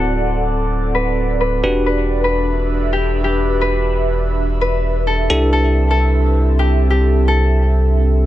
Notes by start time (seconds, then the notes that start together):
Already playing: D1 C4 E4 F#4 A4 D5 F#5
0.95 B4
1.41 B4
1.63 E1 D4 F#4 G4 B4
1.85 B4
2.24 B4 E5
2.93 G4
3.24 G4
3.61 B4
4.61 B4
5.07 A4
5.30 C2 C4 D4 E4 G4 A4
5.53 A4
5.77 A4
5.91 A4
6.59 G4
6.90 G4
7.28 A4